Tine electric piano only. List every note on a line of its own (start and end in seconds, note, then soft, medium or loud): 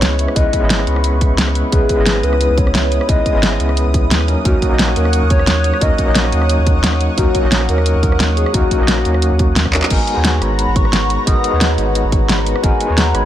0.00 0.35 G#3 loud
0.00 0.35 B3 medium
0.00 0.36 C#4 medium
0.00 0.36 E4 medium
0.00 0.37 B4 loud
0.00 0.35 D#5 loud
0.35 0.58 G#3 medium
0.35 0.59 B3 medium
0.35 0.60 C#4 medium
0.35 0.60 E4 medium
0.35 0.60 B4 loud
0.59 1.69 G#3 loud
0.59 1.70 B3 medium
0.59 1.70 C#4 medium
0.59 1.71 E4 medium
0.65 1.72 D#5 loud
1.71 1.94 G#3 medium
1.71 1.96 B3 medium
1.71 1.96 C#4 medium
1.71 1.96 E4 medium
1.71 1.97 B4 loud
1.96 3.05 G#3 loud
1.96 3.06 B3 medium
1.96 3.07 C#4 medium
1.96 3.07 E4 medium
2.01 3.08 D#5 loud
3.07 3.31 G#3 medium
3.07 3.32 B3 medium
3.07 3.33 C#4 medium
3.07 3.33 E4 medium
3.07 3.33 B4 loud
3.32 4.25 G#3 loud
3.32 4.26 B3 medium
3.32 4.26 C#4 medium
3.36 4.27 E4 medium
3.36 4.28 D#5 loud
4.27 4.43 F#3 medium
4.27 4.43 A#3 medium
4.27 4.43 C#4 medium
4.27 4.43 D#4 medium
4.27 4.44 A#4 medium
4.44 4.68 F#3 medium
4.44 4.69 A#3 medium
4.44 4.69 C#4 medium
4.44 4.69 D#4 medium
4.44 4.70 A#4 loud
4.69 5.78 F#3 loud
4.69 5.79 A#3 medium
4.69 5.80 C#4 medium
4.73 5.80 D#4 medium
4.73 5.81 D#5 loud
5.80 6.04 F#3 loud
5.80 6.05 A#3 medium
5.80 6.05 C#4 medium
5.80 6.06 D#4 medium
5.80 6.06 A#4 loud
6.05 7.15 F#3 loud
6.05 7.15 A#3 medium
6.05 7.16 C#4 medium
6.05 7.17 D#4 medium
6.10 7.17 D#5 loud
7.16 7.40 F#3 medium
7.16 7.41 A#3 medium
7.16 7.42 C#4 medium
7.16 7.42 D#4 medium
7.16 7.42 A#4 loud
7.41 8.51 F#3 loud
7.41 8.51 A#3 medium
7.41 8.52 C#4 medium
7.41 8.53 D#4 medium
7.46 8.53 D#5 loud
8.53 8.77 F#3 medium
8.53 8.78 A#3 medium
8.53 8.78 C#4 medium
8.53 8.78 D#4 medium
8.53 8.79 A#4 loud
8.78 9.71 F#3 loud
8.78 9.71 A#3 medium
8.78 9.72 C#4 medium
8.78 9.73 D#4 medium
8.83 9.73 D#5 loud
9.72 9.88 F#3 medium
9.72 9.88 A#3 medium
9.72 9.88 C#4 medium
9.72 9.89 D#4 medium
9.72 9.89 A#4 loud
9.89 10.13 G#3 medium
9.89 10.14 B3 medium
9.89 10.15 D#4 medium
9.89 10.15 F#4 medium
9.89 10.15 A#4 loud
10.14 11.24 G#3 loud
10.14 11.24 B3 medium
10.14 11.25 D#4 medium
10.14 11.26 F#4 medium
10.19 11.26 C#5 loud
11.26 11.49 G#3 medium
11.26 11.51 B3 medium
11.26 11.51 D#4 medium
11.26 11.51 F#4 medium
11.26 11.52 A#4 loud
11.50 12.60 G#3 loud
11.50 12.61 B3 medium
11.50 12.61 D#4 medium
11.50 12.62 F#4 medium
11.56 12.63 C#5 loud
12.62 12.86 G#3 medium
12.62 12.87 B3 medium
12.62 12.87 D#4 medium
12.62 12.88 F#4 medium
12.62 12.88 A#4 loud
12.87 13.25 G#3 loud
12.87 13.25 B3 medium
12.87 13.25 D#4 medium
12.87 13.25 F#4 medium
12.92 13.25 C#5 loud